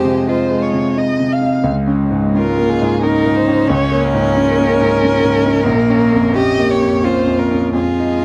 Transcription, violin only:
0.00 0.20 C5 medium
0.28 0.64 C5 medium
0.62 0.99 C#5 medium
0.98 1.34 D#5 medium
1.32 1.66 F5 medium
2.36 2.71 A#4 medium
2.70 3.04 G#4 medium
3.03 3.37 A#4 medium
3.36 3.70 C5 medium
3.69 4.05 C#5 medium
4.03 6.36 A#4 medium
6.37 6.72 D#5 medium
6.71 7.07 C#5 medium
7.05 7.40 C5 medium
7.39 7.74 A#4 medium
7.75 8.25 G#4 medium

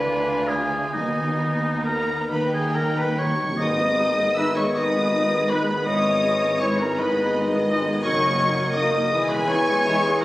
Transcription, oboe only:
0.00 0.49 B4 medium
0.48 0.93 G#4 medium
0.93 1.82 D#4 medium
1.85 2.27 A#4 medium
2.32 2.53 B4 soft
2.54 2.77 G#4 soft
2.75 2.98 A#4 soft
2.97 3.20 B4 soft
3.18 3.59 C#5 medium
3.57 4.37 D#5 medium
4.35 4.54 E5 medium
4.55 4.77 C#5 medium
4.75 5.52 D#5 medium
5.50 5.86 B4 medium
5.86 6.62 D#5 medium
6.60 6.80 C#5 medium
6.78 7.00 A#4 medium
6.98 7.35 B4 medium
8.04 8.76 C#5 medium
8.75 9.31 D#5 medium
9.30 9.49 B4 medium
9.48 10.20 C#5 medium
10.20 10.25 A#4 loud

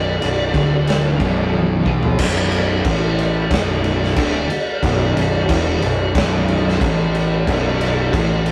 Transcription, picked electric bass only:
0.00 0.17 B0 medium
0.22 0.52 B0 medium
0.54 1.16 D1 medium
1.20 1.82 B0 loud
1.85 2.17 B1 medium
2.19 2.81 B0 loud
2.85 3.47 A1 loud
3.51 4.13 B0 medium
4.16 4.47 D1 medium
4.50 muted picked electric bass stroke soft
4.83 5.14 B0 loud
5.16 5.47 B0 medium
5.49 5.80 E1 medium
5.81 6.12 B0 medium
6.15 6.77 B0 loud
6.81 7.43 A1 loud
7.47 8.09 B0 loud
8.13 8.52 A1 loud

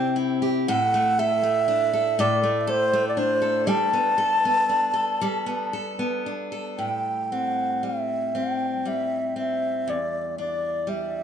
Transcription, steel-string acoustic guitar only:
0.00 0.67 C3 medium
0.00 0.77 C4 medium
0.00 0.15 E4 medium
0.00 0.41 G4 medium
0.16 0.77 E4 medium
0.42 0.67 G4 medium
0.68 2.18 A2 medium
0.68 1.19 A4 medium
0.94 1.43 A3 medium
1.19 1.93 A4 medium
1.43 2.43 A3 medium
1.68 3.16 D4 medium
1.93 2.19 A4 medium
2.19 3.76 A2 medium
2.19 2.67 A4 medium
2.43 2.93 A3 medium
2.67 3.41 A4 medium
2.93 3.93 A3 medium
3.17 4.69 D4 medium
3.42 3.67 A4 medium
3.67 5.21 G3 medium
3.67 4.17 A4 medium
3.93 4.43 B3 medium
4.18 4.93 A4 medium
4.45 5.45 B3 medium
4.69 6.25 D4 medium
4.94 5.22 A4 medium
5.21 7.83 G3 medium
5.21 5.73 A4 medium
5.46 5.98 B3 medium
5.73 6.51 A4 medium
5.99 6.89 B3 medium
6.26 6.89 D4 soft
6.52 7.86 A4 medium
6.79 9.87 A2 medium
7.32 8.34 C4 soft
7.83 8.85 G3 soft
8.35 9.35 C4 soft
8.85 10.87 G3 soft
9.36 9.97 C4 soft
9.88 11.23 E2 medium
10.38 11.23 D4 soft
10.87 11.23 G3 soft

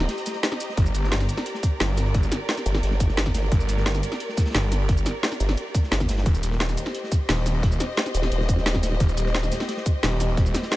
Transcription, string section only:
0.00 6.25 G4 medium
0.00 1.82 C5 medium
0.00 0.77 D#5 medium
0.00 6.26 A#5 medium
0.86 6.26 D5 medium
1.12 6.98 A#4 medium
6.26 10.76 G4 medium
6.53 10.76 C5 medium
6.59 10.76 D#5 medium

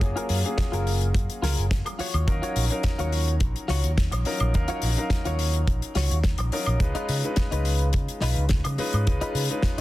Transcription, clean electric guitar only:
0.16 0.37 F4 loud
0.16 0.37 G#4 medium
0.16 0.38 A#4 loud
0.57 muted clean electric guitar stroke soft
0.72 1.08 F4 medium
0.72 1.08 G#4 medium
0.72 1.08 A#4 medium
1.42 1.64 F4 loud
1.42 1.65 G#4 loud
1.42 1.65 A#4 loud
1.85 muted clean electric guitar stroke medium
1.99 2.33 F4 medium
1.99 2.34 F#4 medium
1.99 2.34 C#5 loud
2.42 2.63 F4 loud
2.42 2.64 F#4 loud
2.42 2.64 C#5 loud
2.84 muted clean electric guitar stroke soft
2.99 3.34 F4 medium
2.99 3.34 F#4 medium
2.99 3.35 C#5 medium
3.68 3.90 F4 loud
3.68 3.91 F#4 medium
3.68 3.91 C#5 loud
4.12 muted clean electric guitar stroke medium
4.25 muted clean electric guitar stroke soft
4.68 4.90 F4 loud
4.68 4.90 F#4 medium
4.68 4.90 C#5 loud
5.11 muted clean electric guitar stroke soft
5.25 5.61 F4 medium
5.25 5.61 F#4 medium
5.25 5.61 C#5 medium
5.95 6.17 F4 loud
5.95 6.18 F#4 loud
5.95 6.18 C#5 loud
6.39 muted clean electric guitar stroke medium
6.52 muted clean electric guitar stroke soft
6.95 7.16 D#4 loud
6.95 7.17 F4 loud
6.95 7.17 B4 loud
7.37 muted clean electric guitar stroke soft
7.51 7.87 D#4 medium
7.51 7.87 F4 medium
7.51 7.88 B4 medium
8.22 8.44 D#4 loud
8.22 8.44 F4 loud
8.22 8.44 B4 loud
8.65 muted clean electric guitar stroke medium
8.78 muted clean electric guitar stroke soft
9.21 9.42 D#4 loud
9.21 9.43 F4 loud
9.21 9.43 B4 loud
9.63 muted clean electric guitar stroke soft

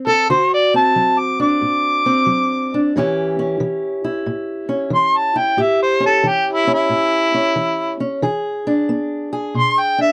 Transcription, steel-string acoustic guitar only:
0.00 0.25 F#3 medium
0.00 0.27 C4 soft
0.07 0.30 A4 medium
0.30 0.91 D3 medium
0.30 2.94 F#4 medium
0.74 2.05 C4 medium
0.96 1.57 F#3 medium
1.40 2.72 D4 medium
1.62 2.23 A2 medium
2.06 2.92 C4 medium
2.26 2.89 F#3 medium
2.74 2.93 D4 soft
2.96 3.56 A2 medium
2.96 3.60 E3 medium
2.96 3.39 C#4 medium
2.96 4.04 E4 medium
2.96 5.57 G4 medium
3.39 4.68 C#4 medium
3.60 4.22 E3 medium
4.04 5.35 E4 medium
4.26 4.88 A2 medium
4.69 5.55 C#4 medium
4.90 5.53 E3 medium
5.36 8.66 E4 medium
5.57 6.19 A2 medium
5.57 8.20 G4 medium
6.00 6.66 C#4 medium
6.24 6.86 E3 medium
6.67 7.33 C#4 medium
6.89 7.52 A2 medium
7.34 7.99 C#4 medium
7.56 8.18 E3 medium
8.00 8.20 C#4 soft
8.22 8.84 E3 medium
8.22 9.32 G#4 medium
8.67 9.97 D4 medium
8.89 9.51 B3 medium
9.33 10.12 G#4 medium
9.54 10.12 B2 medium
9.98 10.12 D4 soft

